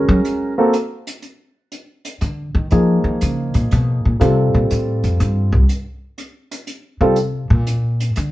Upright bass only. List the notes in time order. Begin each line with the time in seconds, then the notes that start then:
0.09 F#3
2.22 D3
2.55 D#3
2.72 F3
3.04 D#3
3.22 C#3
3.55 A#2
3.72 B2
4.05 A#2
4.21 C3
4.54 A#2
4.71 A2
5.04 F2
5.20 G2
5.52 C2
7.01 C3
7.50 A#2
8.17 D3